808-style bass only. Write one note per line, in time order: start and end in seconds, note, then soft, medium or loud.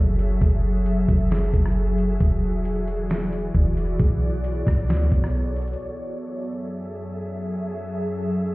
0.00 0.39 F#1 loud
0.41 1.06 F#1 loud
1.08 1.51 F#1 loud
1.53 2.18 F#1 loud
2.20 3.51 E1 loud
3.55 3.98 E1 loud
4.00 4.64 B1 loud
4.67 4.91 B1 loud
4.89 5.10 D2 loud
5.12 5.76 B1 loud